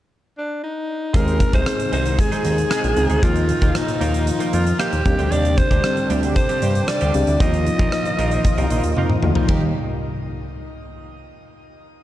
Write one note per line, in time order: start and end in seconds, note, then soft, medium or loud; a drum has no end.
0.38 0.61 D4 medium
0.64 1.17 D#4 medium
1.14 1.44 D#2 loud
1.14 3.21 C3 medium
1.14 5.02 D#3 medium
1.14 1.38 G#3 medium
1.14 1.48 G#3 medium
1.14 3.21 G#3 medium
1.14 1.38 C4 medium
1.14 1.48 C4 medium
1.14 5.02 D#4 medium
1.14 1.39 D#4 medium
1.14 1.49 D#4 medium
1.14 3.21 G#4 medium
1.14 1.49 G#4 medium
1.14 1.39 G#4 medium
1.14 1.54 A#4 medium
1.14 kick loud
1.14 closed hi-hat medium
1.28 closed hi-hat soft
1.40 muted clean electric guitar stroke soft
1.40 kick medium
1.40 closed hi-hat medium
1.53 1.63 C2 medium
1.53 1.65 G#3 soft
1.53 1.65 C4 soft
1.53 1.65 D#4 medium
1.53 1.65 G#4 medium
1.53 1.90 C5 medium
1.53 kick medium
1.53 closed hi-hat soft
1.66 2.34 G#3 medium
1.66 2.34 C4 medium
1.66 2.35 D#4 medium
1.66 2.35 G#4 medium
1.66 cross-stick loud
1.66 closed hi-hat medium
1.80 muted clean electric guitar stroke soft
1.80 closed hi-hat medium
1.92 2.22 C2 medium
1.92 2.06 G#3 medium
1.92 2.06 C4 medium
1.92 2.05 D#4 medium
1.92 2.05 G#4 medium
1.92 2.21 C5 medium
1.92 closed hi-hat medium
2.06 2.18 G#3 soft
2.06 2.18 C4 soft
2.06 2.17 D#4 medium
2.06 2.17 G#4 medium
2.06 closed hi-hat medium
2.19 3.25 G#4 medium
2.19 muted clean electric guitar stroke soft
2.19 kick medium
2.19 closed hi-hat medium
2.32 2.43 G#3 medium
2.32 2.44 C4 medium
2.32 2.44 D#4 medium
2.32 2.45 G#4 medium
2.32 closed hi-hat soft
2.44 2.64 D#2 medium
2.44 2.56 G#3 medium
2.44 2.56 C4 medium
2.44 2.57 D#4 medium
2.44 2.56 G#4 medium
2.44 closed hi-hat medium
2.58 muted clean electric guitar stroke soft
2.58 closed hi-hat soft
2.70 2.85 G#3 medium
2.70 2.84 C4 medium
2.70 2.83 D#4 medium
2.70 2.82 G#4 medium
2.70 cross-stick loud
2.70 closed hi-hat medium
2.84 2.94 A#1 medium
2.84 muted clean electric guitar stroke medium
2.84 closed hi-hat soft
2.96 3.07 C#2 medium
2.96 3.13 G#3 medium
2.96 3.14 C4 medium
2.96 3.14 D#4 medium
2.96 3.14 G#4 medium
2.96 muted clean electric guitar stroke soft
2.96 closed hi-hat medium
3.10 3.20 D2 medium
3.10 3.22 G#3 soft
3.10 3.22 C4 medium
3.10 3.22 D#4 medium
3.10 3.21 G#4 medium
3.10 closed hi-hat soft
3.22 3.52 D#2 loud
3.22 5.04 A#2 medium
3.22 3.56 F3 medium
3.22 5.04 F3 medium
3.22 3.57 A#3 medium
3.22 3.47 A#3 medium
3.22 3.57 D#4 medium
3.22 3.47 D#4 medium
3.22 3.57 F4 medium
3.22 3.77 F4 medium
3.22 5.04 F4 medium
3.22 3.47 F4 medium
3.22 3.48 A#4 medium
3.22 kick loud
3.22 closed hi-hat medium
3.36 closed hi-hat soft
3.49 muted clean electric guitar stroke soft
3.49 closed hi-hat medium
3.62 3.72 D#2 medium
3.62 3.73 A#3 medium
3.62 3.74 D#4 medium
3.62 3.74 F4 medium
3.62 3.73 A#4 medium
3.62 kick medium
3.62 closed hi-hat medium
3.74 4.43 F3 medium
3.74 4.43 A#3 medium
3.74 4.43 D#4 medium
3.74 4.55 D#4 medium
3.74 4.43 F4 medium
3.74 muted clean electric guitar stroke soft
3.74 cross-stick loud
3.74 closed hi-hat medium
3.88 muted clean electric guitar stroke soft
3.88 closed hi-hat medium
4.01 4.30 D#2 medium
4.01 4.14 A#3 medium
4.01 4.14 D#4 medium
4.01 4.13 F4 medium
4.01 4.12 A#4 medium
4.01 closed hi-hat medium
4.13 4.25 A#3 soft
4.13 4.26 D#4 soft
4.13 4.26 F4 medium
4.13 4.25 A#4 medium
4.13 closed hi-hat medium
4.27 muted clean electric guitar stroke soft
4.27 closed hi-hat medium
4.40 4.51 A#3 medium
4.40 4.52 D#4 medium
4.40 4.53 F4 medium
4.40 4.53 A#4 medium
4.40 closed hi-hat medium
4.52 4.73 F2 medium
4.52 4.64 A#3 medium
4.52 4.65 D#4 medium
4.52 4.65 F4 medium
4.52 4.79 F4 medium
4.52 4.64 A#4 medium
4.52 closed hi-hat medium
4.66 muted clean electric guitar stroke soft
4.66 closed hi-hat soft
4.79 4.94 A#3 medium
4.79 4.92 D#4 medium
4.79 4.91 F4 medium
4.79 5.33 G4 medium
4.79 4.91 A#4 medium
4.79 cross-stick loud
4.79 closed hi-hat medium
4.92 5.02 D#2 medium
4.92 muted clean electric guitar stroke soft
4.92 closed hi-hat soft
5.05 5.15 D#2 medium
5.05 7.38 C3 medium
5.05 7.38 D3 medium
5.05 5.68 G3 medium
5.05 7.38 G3 medium
5.05 5.68 C4 medium
5.05 7.38 D4 medium
5.05 5.68 D4 medium
5.05 7.38 G4 medium
5.05 5.69 G4 medium
5.05 muted clean electric guitar stroke soft
5.05 kick medium
5.05 closed hi-hat medium
5.18 5.29 D2 medium
5.18 5.30 G3 soft
5.18 5.31 C4 medium
5.18 5.30 D4 medium
5.18 5.30 G4 medium
5.18 closed hi-hat soft
5.31 5.61 D#2 loud
5.31 5.55 G3 medium
5.31 5.56 C4 medium
5.31 5.56 D4 medium
5.31 5.56 G4 medium
5.31 5.59 D5 loud
5.31 closed hi-hat medium
5.45 closed hi-hat soft
5.58 6.10 C5 loud
5.58 muted clean electric guitar stroke soft
5.58 kick medium
5.58 closed hi-hat medium
5.71 5.81 D2 medium
5.71 5.83 G3 medium
5.71 5.83 C4 medium
5.71 5.82 D4 medium
5.71 5.82 G4 medium
5.71 kick medium
5.71 closed hi-hat soft
5.83 6.52 G3 medium
5.83 6.52 C4 medium
5.83 6.52 D4 medium
5.83 6.52 G4 medium
5.83 muted clean electric guitar stroke soft
5.83 cross-stick loud
5.83 closed hi-hat medium
5.97 muted clean electric guitar stroke soft
5.97 closed hi-hat soft
6.10 6.39 D2 medium
6.10 6.24 G3 medium
6.10 6.23 C4 medium
6.10 6.23 D4 medium
6.10 6.22 G4 medium
6.10 closed hi-hat medium
6.23 6.35 G3 soft
6.23 6.35 C4 medium
6.23 6.35 D4 medium
6.23 6.35 G4 medium
6.23 closed hi-hat medium
6.36 6.90 C5 medium
6.36 muted clean electric guitar stroke soft
6.36 kick medium
6.36 closed hi-hat medium
6.49 6.61 G3 medium
6.49 6.62 C4 medium
6.49 6.62 D4 medium
6.49 6.63 G4 medium
6.49 closed hi-hat medium
6.62 6.82 G2 medium
6.62 6.74 G3 medium
6.62 6.74 C4 medium
6.62 6.74 D4 medium
6.62 6.74 G4 medium
6.62 closed hi-hat medium
6.75 muted clean electric guitar stroke soft
6.75 closed hi-hat soft
6.88 7.40 D5 medium
6.88 muted clean electric guitar stroke soft
6.88 cross-stick loud
6.88 closed hi-hat medium
7.01 7.11 D2 medium
7.01 7.13 G3 medium
7.01 7.14 C4 medium
7.01 7.14 D4 medium
7.01 7.15 G4 medium
7.01 closed hi-hat soft
7.14 7.24 C#2 medium
7.14 7.31 G3 medium
7.14 7.31 C4 medium
7.14 7.31 D4 medium
7.14 7.32 G4 medium
7.14 muted clean electric guitar stroke soft
7.14 closed hi-hat medium
7.27 7.37 D2 medium
7.27 muted clean electric guitar stroke soft
7.27 closed hi-hat soft
7.40 7.70 D#2 loud
7.40 9.47 A#2 medium
7.40 9.47 D#3 medium
7.40 9.47 F3 medium
7.40 7.74 F3 medium
7.40 7.75 A#3 medium
7.40 7.65 A#3 medium
7.40 9.47 D#4 medium
7.40 7.75 D#4 medium
7.40 7.65 D#4 medium
7.40 9.47 F4 medium
7.40 7.75 F4 medium
7.40 7.65 F4 medium
7.40 7.65 A#4 medium
7.40 8.93 D#5 loud
7.40 kick loud
7.40 closed hi-hat medium
7.54 closed hi-hat soft
7.67 muted clean electric guitar stroke soft
7.67 closed hi-hat medium
7.79 7.89 A#1 medium
7.79 7.91 A#3 medium
7.79 7.92 D#4 medium
7.79 7.91 F4 medium
7.79 7.91 A#4 medium
7.79 kick medium
7.79 closed hi-hat soft
7.92 8.60 F3 medium
7.92 8.60 A#3 medium
7.92 8.61 D#4 medium
7.92 8.61 F4 medium
7.92 muted clean electric guitar stroke soft
7.92 cross-stick loud
7.92 closed hi-hat medium
8.05 muted clean electric guitar stroke soft
8.05 closed hi-hat soft
8.18 8.38 A#1 medium
8.18 8.32 A#3 medium
8.18 8.32 D#4 medium
8.18 8.31 F4 medium
8.18 8.31 A#4 medium
8.18 closed hi-hat medium
8.31 8.43 A#3 soft
8.31 8.44 D#4 medium
8.31 8.44 F4 medium
8.31 8.43 A#4 medium
8.31 closed hi-hat medium
8.44 muted clean electric guitar stroke soft
8.44 kick medium
8.44 closed hi-hat medium
8.58 8.68 C2 loud
8.58 8.69 A#3 medium
8.58 8.70 D#4 medium
8.58 8.70 F4 medium
8.58 8.71 A#4 medium
8.58 closed hi-hat medium
8.70 8.81 A#1 medium
8.70 8.82 A#3 medium
8.70 8.82 D#4 medium
8.70 8.83 F4 medium
8.70 8.83 A#4 medium
8.70 closed hi-hat medium
8.84 8.94 D#2 medium
8.84 closed hi-hat medium
8.97 9.16 F2 medium
8.97 9.12 A#3 medium
8.97 9.10 D#4 medium
8.97 9.10 F4 medium
8.97 9.09 A#4 medium
8.97 9.22 A#5 medium
8.97 high tom medium
9.10 muted clean electric guitar stroke soft
9.10 mid tom medium
9.23 9.33 D2 medium
9.23 9.40 F3 medium
9.23 9.40 A#3 medium
9.23 9.40 D#4 medium
9.23 9.40 F4 medium
9.23 9.47 F5 medium
9.23 muted clean electric guitar stroke soft
9.23 mid tom medium
9.35 9.48 A#3 soft
9.35 9.48 D#4 medium
9.35 9.48 F4 medium
9.35 9.47 A#4 medium
9.35 floor tom medium
9.48 9.73 D#2 medium
9.48 9.73 A#2 medium
9.48 9.73 D#3 medium
9.48 9.73 G3 medium
9.48 9.65 A#3 medium
9.48 9.73 A#3 medium
9.48 9.73 D#4 medium
9.48 9.65 D#4 medium
9.48 9.73 G4 medium
9.48 9.65 G4 medium
9.48 9.65 A#4 medium
9.48 kick medium
9.48 ride bell medium